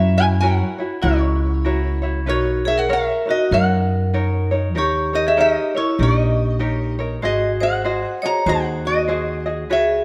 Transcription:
0.00 0.60 F#2 loud
0.00 0.17 E4 medium
0.00 0.18 F#4 medium
0.00 0.17 A#4 medium
0.00 0.16 C#5 medium
0.00 0.16 E5 loud
0.17 0.42 E4 medium
0.17 0.41 F#4 soft
0.17 0.41 C#5 medium
0.17 0.24 G#5 loud
0.41 0.78 E4 medium
0.41 0.79 F#4 medium
0.41 0.78 A#4 medium
0.41 0.77 C#5 medium
0.41 1.05 F#5 medium
0.78 1.03 E4 medium
0.78 1.02 F#4 soft
0.78 1.02 C#5 medium
1.02 2.27 C#2 medium
1.02 1.98 E4 medium
1.02 1.64 E4 medium
1.02 1.65 F#4 medium
1.02 1.64 A#4 medium
1.02 1.99 C#5 medium
1.02 1.66 C#5 medium
1.65 2.02 E4 medium
1.65 2.03 F#4 medium
1.65 2.01 A#4 medium
1.65 2.01 C#5 medium
2.02 2.27 E4 medium
2.02 2.27 F#4 soft
2.02 2.26 C#5 medium
2.26 3.08 B1 loud
2.26 2.65 D#4 medium
2.26 2.62 F#4 medium
2.26 2.65 A#4 medium
2.26 2.65 B4 medium
2.26 2.64 C#5 medium
2.26 2.67 C#5 medium
2.65 2.90 D#4 soft
2.65 2.76 G#4 medium
2.65 2.88 A#4 soft
2.65 2.89 C#5 medium
2.65 2.78 E5 medium
2.78 2.89 A#4 medium
2.78 2.90 F#5 medium
2.89 3.26 A#4 medium
2.89 3.27 A#4 medium
2.89 3.24 C#5 medium
2.89 3.30 E5 loud
3.26 3.50 D#4 soft
3.26 3.50 F#4 medium
3.26 3.51 A#4 medium
3.26 3.50 C#5 soft
3.30 3.53 D#5 medium
3.51 4.75 F#2 medium
3.51 4.13 D#4 medium
3.51 4.14 A#4 medium
3.51 4.47 A#4 medium
3.51 4.14 C#5 medium
3.51 4.48 F#5 medium
4.14 4.51 D#4 medium
4.14 4.51 A#4 medium
4.14 4.50 C#5 medium
4.51 4.74 D#4 soft
4.51 4.74 A#4 medium
4.51 4.75 C#5 medium
4.75 5.55 D#2 loud
4.75 5.13 D#4 medium
4.75 5.13 G4 medium
4.75 5.11 G4 medium
4.75 5.13 A#4 medium
4.75 5.12 C#5 medium
4.75 5.15 C#5 medium
5.13 5.36 D#4 soft
5.13 5.25 G4 medium
5.13 5.36 A#4 soft
5.13 5.37 C#5 medium
5.13 5.26 D#5 loud
5.27 5.38 G#4 medium
5.27 5.38 E5 medium
5.37 5.75 D#4 medium
5.37 5.74 G4 medium
5.37 5.76 G4 medium
5.37 5.75 A#4 medium
5.37 5.73 C#5 medium
5.37 5.77 D#5 loud
5.75 5.98 E4 medium
5.75 5.98 A#4 medium
5.75 5.98 C#5 medium
5.75 6.00 C#5 medium
5.99 7.23 A#1 medium
5.99 6.60 D#4 medium
5.99 6.58 G4 medium
5.99 6.95 G4 medium
5.99 6.59 A#4 medium
5.99 6.59 C#5 medium
5.99 6.96 D#5 medium
6.59 6.98 D#4 medium
6.59 6.98 G4 medium
6.59 6.98 A#4 medium
6.59 6.97 C#5 medium
6.99 7.22 D#4 medium
6.99 7.23 A#4 medium
6.99 7.22 C#5 medium
7.22 8.03 G#1 loud
7.22 7.57 F#4 medium
7.22 7.60 F#4 medium
7.22 7.61 G#4 medium
7.22 7.60 C5 medium
7.22 7.60 D#5 medium
7.22 7.62 D#5 medium
7.61 7.84 F#4 soft
7.61 7.84 G#4 soft
7.61 8.18 C5 medium
7.61 7.84 D#5 medium
7.61 8.25 F#5 loud
7.84 8.23 F#4 medium
7.84 8.23 G#4 medium
7.84 8.22 C5 medium
7.84 8.22 D#5 medium
8.22 8.46 F#4 soft
8.22 8.47 G#4 soft
8.22 8.44 C#5 medium
8.22 8.46 D#5 medium
8.22 8.48 A#5 loud
8.46 9.69 D#2 loud
8.46 9.08 F#4 medium
8.46 9.09 G#4 medium
8.46 9.06 C5 medium
8.46 8.82 C5 medium
8.46 9.08 D#5 medium
8.46 8.87 F#5 loud
8.85 9.42 F#4 medium
8.85 9.43 D#5 medium
9.08 9.46 F#4 medium
9.08 9.45 G#4 medium
9.08 9.46 C5 medium
9.08 9.44 D#5 medium
9.46 9.69 F#4 soft
9.46 9.69 G#4 medium
9.46 9.70 D#5 medium
9.69 10.04 C#2 medium
9.69 10.04 F#4 medium
9.69 10.04 G#4 medium
9.69 10.04 B4 medium
9.69 10.04 C#5 medium
9.69 10.04 E5 medium

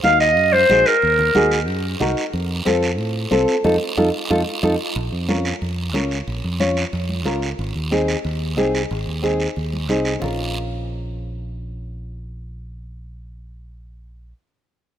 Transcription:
0.04 0.37 D#2 medium
0.04 0.27 D#4 medium
0.04 0.27 F#4 medium
0.04 0.27 A#4 medium
0.04 0.19 F5 medium
0.04 high conga medium
0.04 short guiro medium
0.20 0.54 D#5 loud
0.20 short guiro medium
0.37 0.63 F#2 medium
0.37 long guiro medium
0.53 0.88 C5 loud
0.53 high conga medium
0.69 0.83 A#1 medium
0.69 0.93 D#4 medium
0.69 0.93 F#4 medium
0.69 0.93 G#4 medium
0.69 high conga medium
0.69 short guiro medium
0.86 1.52 A#4 medium
0.86 short guiro medium
1.02 1.29 D#2 medium
1.02 long guiro medium
1.19 low conga medium
1.35 1.68 D#2 medium
1.35 1.58 D#4 medium
1.35 1.58 F#4 medium
1.35 1.58 G#4 loud
1.35 high conga medium
1.35 short guiro medium
1.51 short guiro medium
1.68 1.94 F#2 loud
1.68 long guiro medium
2.00 2.14 C2 medium
2.00 2.23 D#4 medium
2.00 2.24 F#4 medium
2.00 2.24 A#4 medium
2.00 high conga medium
2.00 low conga medium
2.00 short guiro medium
2.17 short guiro medium
2.33 2.60 F2 loud
2.33 long guiro medium
2.65 2.99 F2 medium
2.65 2.89 C4 medium
2.65 2.89 F4 medium
2.65 2.89 A4 medium
2.65 high conga medium
2.65 short guiro medium
2.83 short guiro medium
2.98 3.25 A2 loud
2.98 long guiro medium
3.31 3.45 C2 medium
3.31 3.54 C4 medium
3.31 3.54 F4 medium
3.31 3.55 A4 medium
3.31 high conga medium
3.31 short guiro medium
3.48 short guiro medium
3.64 3.77 F2 loud
3.64 3.75 D#4 medium
3.64 3.75 F4 medium
3.64 3.75 A4 medium
3.64 high conga loud
3.64 long guiro medium
3.97 4.10 F2 loud
3.97 4.08 D#4 medium
3.97 4.08 F4 medium
3.97 4.08 A4 medium
3.97 high conga loud
3.97 long guiro medium
4.30 4.43 F2 medium
4.30 4.41 D#4 medium
4.30 4.41 F4 loud
4.30 4.41 A4 medium
4.30 high conga medium
4.30 long guiro loud
4.63 4.75 F2 loud
4.63 4.74 D#4 medium
4.63 4.73 F4 loud
4.63 4.74 A4 medium
4.63 high conga medium
4.63 long guiro medium
4.96 5.09 A#1 loud
4.96 long guiro medium
5.12 5.52 F2 medium
5.28 5.52 C#4 medium
5.28 5.52 F4 medium
5.28 5.52 A#4 medium
5.28 high conga medium
5.28 short guiro medium
5.45 short guiro medium
5.62 5.95 F2 medium
5.62 long guiro medium
5.94 6.21 C#2 medium
5.94 6.17 C#4 medium
5.94 6.17 F4 medium
5.94 6.17 A#4 medium
5.94 high conga medium
5.94 short guiro medium
6.11 short guiro medium
6.28 6.41 A#1 medium
6.28 long guiro medium
6.44 6.83 F2 medium
6.60 6.83 C#4 medium
6.60 6.83 F4 medium
6.60 6.83 C#5 medium
6.60 high conga medium
6.60 short guiro medium
6.77 short guiro medium
6.93 7.26 F2 loud
6.93 long guiro medium
7.09 high conga medium
7.25 7.52 C#2 medium
7.25 7.48 C#4 medium
7.25 7.49 F4 medium
7.25 7.49 A#4 medium
7.25 high conga medium
7.25 short guiro medium
7.42 short guiro medium
7.59 7.72 G#1 loud
7.59 long guiro medium
7.75 8.15 D#2 medium
7.91 8.14 C4 medium
7.91 8.15 D#4 medium
7.91 8.15 G#4 medium
7.91 high conga medium
7.91 short guiro medium
8.08 short guiro medium
8.25 8.58 D#2 medium
8.25 long guiro medium
8.57 8.84 C2 medium
8.57 8.80 C4 medium
8.57 8.80 D#4 medium
8.57 8.80 G#4 medium
8.57 high conga medium
8.57 short guiro medium
8.75 short guiro medium
8.91 9.04 G#1 loud
8.91 long guiro medium
9.07 9.46 D#2 medium
9.22 9.46 C4 medium
9.22 9.46 D#4 medium
9.22 9.46 G#4 medium
9.22 high conga medium
9.22 short guiro medium
9.40 short guiro medium
9.56 9.89 D#2 medium
9.56 long guiro medium
9.73 high conga medium
9.89 10.16 C2 medium
9.89 10.12 C4 medium
9.89 10.12 D#4 medium
9.89 10.12 G#4 medium
9.89 high conga medium
9.89 short guiro medium
10.05 short guiro medium
10.19 14.32 A#1 medium
10.19 14.30 C#4 medium
10.19 14.31 F4 medium
10.19 low conga medium
10.19 long guiro medium
10.23 14.32 A#4 medium

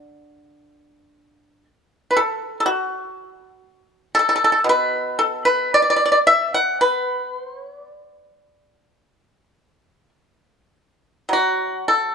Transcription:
0.00 1.66 D3 soft
0.00 1.65 D5 medium
2.11 2.16 B4 soft
2.17 2.57 A4 medium
2.60 2.65 A4 soft
2.66 4.11 F#4 medium
4.15 4.18 A4 medium
4.19 4.27 A4 soft
4.29 4.34 A4 medium
4.36 4.43 A4 medium
4.44 4.51 A4 medium
4.52 4.58 A4 soft
4.64 7.86 B2 medium
4.69 5.17 B4 medium
5.19 5.44 A4 medium
5.45 5.70 B4 medium
5.74 5.80 D5 medium
5.82 5.88 D5 soft
5.90 5.95 D5 medium
5.96 6.03 D5 soft
6.06 6.11 D5 medium
6.12 6.18 D5 medium
6.27 6.52 E5 medium
6.54 6.79 F#5 medium
6.81 7.32 B4 medium
7.32 7.58 C5 medium
7.58 7.83 C#5 medium
7.83 10.09 D5 medium
11.29 12.15 F#3 soft
11.33 11.84 F#4 medium
11.88 12.15 A4 medium

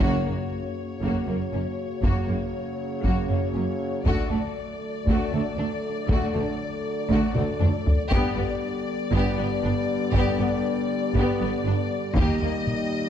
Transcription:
0.00 0.24 F#1 medium
0.00 0.24 F#2 medium
0.00 0.72 F#2 medium
0.00 4.01 C#3 medium
0.00 4.01 F#3 medium
0.00 0.23 A#3 medium
0.00 4.02 A#3 medium
0.00 0.23 F#4 medium
0.00 4.02 F#4 medium
0.00 4.02 C#5 medium
0.00 taiko medium
0.25 0.34 F#1 soft
0.25 0.33 F#2 soft
0.25 0.34 A#3 soft
1.02 1.10 F#1 medium
1.02 1.10 F#2 medium
1.02 1.25 A#3 medium
1.02 1.25 F#4 soft
1.02 taiko medium
1.27 1.36 F#1 soft
1.27 1.35 F#2 soft
1.27 1.36 A#3 soft
1.52 1.60 F#1 soft
1.52 1.62 F#2 soft
1.52 1.60 A#3 soft
1.52 1.61 C#4 soft
2.03 2.11 F#1 medium
2.03 2.11 F#2 medium
2.03 2.26 A#3 medium
2.03 2.27 F#4 medium
2.03 taiko medium
2.28 2.36 F#1 soft
2.28 2.36 F#2 soft
2.28 2.36 A#3 soft
2.28 2.38 A#3 soft
3.03 3.12 F#1 medium
3.03 3.12 F#2 medium
3.03 3.27 A#3 medium
3.03 3.28 F#4 medium
3.03 taiko medium
3.29 3.37 F#1 soft
3.29 3.38 F#2 soft
3.29 3.38 A#3 soft
3.53 3.62 F#1 soft
3.53 3.63 F#2 soft
3.53 3.64 A#3 soft
3.53 3.61 C#4 soft
4.05 4.13 D2 medium
4.05 4.14 D2 medium
4.05 7.94 D3 medium
4.05 7.94 F#3 medium
4.05 4.29 A3 medium
4.05 8.07 A3 medium
4.05 4.29 F#4 medium
4.05 8.08 A4 medium
4.05 8.07 D5 medium
4.05 taiko medium
4.30 4.38 D2 soft
4.30 4.39 D2 soft
4.30 4.38 A3 soft
4.30 4.39 A3 soft
5.06 5.14 D2 medium
5.06 5.15 D2 medium
5.06 5.32 A3 medium
5.06 5.31 F#4 medium
5.06 taiko medium
5.32 5.40 D2 medium
5.32 5.41 D2 medium
5.32 5.41 A3 medium
5.32 5.42 A3 soft
5.57 5.65 D2 soft
5.57 5.66 D2 medium
5.57 5.67 A3 medium
5.57 5.66 D4 medium
6.08 6.16 D2 medium
6.08 6.17 D2 medium
6.08 6.32 A3 medium
6.08 6.32 F#4 medium
6.08 taiko loud
6.34 6.42 D2 medium
6.34 6.43 D2 medium
6.34 6.42 A3 soft
6.34 6.43 A3 soft
7.09 7.17 D2 medium
7.09 7.18 D2 medium
7.09 7.34 A3 medium
7.09 7.34 F#4 medium
7.09 taiko medium
7.35 7.43 D2 medium
7.35 7.43 A3 medium
7.35 7.46 A3 medium
7.35 taiko mid medium
7.59 7.69 D2 medium
7.59 7.71 A3 medium
7.59 7.67 D4 medium
7.59 taiko low-mid medium
7.86 taiko low medium
8.10 8.19 G1 medium
8.10 8.19 G2 medium
8.10 12.13 D3 medium
8.10 12.13 G3 medium
8.10 12.00 B3 medium
8.10 8.36 B3 medium
8.10 8.34 G4 medium
8.10 12.00 G4 medium
8.10 12.13 D5 medium
8.10 taiko loud
8.37 8.45 G1 medium
8.37 8.45 G2 medium
8.37 8.46 B3 medium
8.37 8.47 B3 soft
9.12 9.21 G1 medium
9.12 9.20 G2 medium
9.12 9.37 B3 medium
9.12 9.37 G4 medium
9.12 taiko medium
9.37 9.46 G1 medium
9.37 9.46 G2 medium
9.37 9.45 B3 medium
9.37 9.48 B3 medium
9.62 9.72 G1 medium
9.62 9.70 G2 medium
9.62 9.72 B3 medium
9.62 9.71 D4 medium
10.12 10.23 G1 medium
10.12 10.20 G2 medium
10.12 10.38 B3 medium
10.12 10.37 G4 medium
10.12 taiko loud
10.39 10.47 G1 medium
10.39 10.47 G2 medium
10.39 10.47 B3 medium
10.39 10.48 B3 medium
11.14 11.23 G1 medium
11.14 11.22 G2 medium
11.14 11.40 B3 medium
11.14 11.39 G4 medium
11.14 taiko medium
11.40 11.49 G1 medium
11.40 11.48 G2 medium
11.40 11.49 B3 medium
11.65 11.73 G1 medium
11.65 11.73 G2 medium
11.65 11.74 B3 medium
11.65 11.74 D4 medium
12.15 12.23 D#2 medium
12.15 12.24 D#2 medium
12.15 13.09 D#3 medium
12.15 13.09 G3 medium
12.15 13.09 A#3 medium
12.15 12.41 A#3 medium
12.15 12.40 G4 medium
12.15 13.09 G4 medium
12.15 13.09 D#5 medium
12.15 taiko loud
12.41 12.49 D#2 soft
12.41 12.51 A#3 medium
12.67 taiko mid soft

